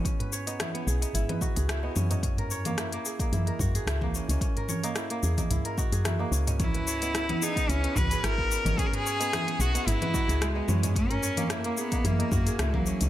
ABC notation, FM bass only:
X:1
M:4/4
L:1/16
Q:"Swing 16ths" 1/4=110
K:C#dor
V:1 name="FM bass" clef=bass
z6 B,,, z G,,, z2 C,,2 z F,,2- | F,,4- F,, z3 F,, z F,, z C,,2 z C,, | z6 E,, z C,, z2 F,,2 z C,,2- | C,,4- C,, z3 C,, z C,, z G,,,2 z G,,, |
z6 B,,, z G,,, z2 C,,2 z F,,2- | F,,4- F,, z3 F,, z F,, z C,,2 z C,, |]